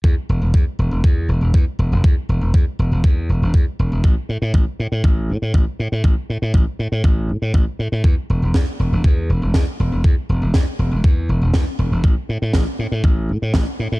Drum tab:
SD |--------|--------|--------|--------|
BD |o-o-o-o-|o-o-o-o-|o-o-o-o-|o-o-o-o-|

SD |--o---o-|--o---o-|--o---o-|
BD |o-o-o-o-|o-o-o-o-|o-o-o-o-|